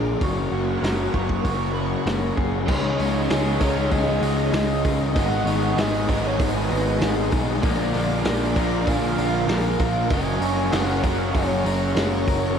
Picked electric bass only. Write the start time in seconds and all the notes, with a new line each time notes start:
Already playing: A#1
0.21 F#1
0.52 F#1
0.82 F#1
1.14 F#1
1.45 F#1
2.06 F#1
2.37 F#1
2.69 C#2
2.99 C#2
3.30 C#2
3.61 C#2
3.92 C#2
4.22 C#2
4.53 C#2
4.85 C#2
5.16 G#1
5.45 G#1
5.77 G#1
6.09 G#1
6.39 G#1
6.71 G#1
7.01 G#1
7.33 B1
7.63 A#1
7.95 A#1
8.25 A#1
8.56 A#1
8.87 A#1
9.17 A#1
9.48 A#1
9.79 A#1
10.11 F#1
10.40 F#1
10.73 F#1
11.04 F#1
11.35 F#1
11.65 F#1
11.96 F#1
12.27 F#1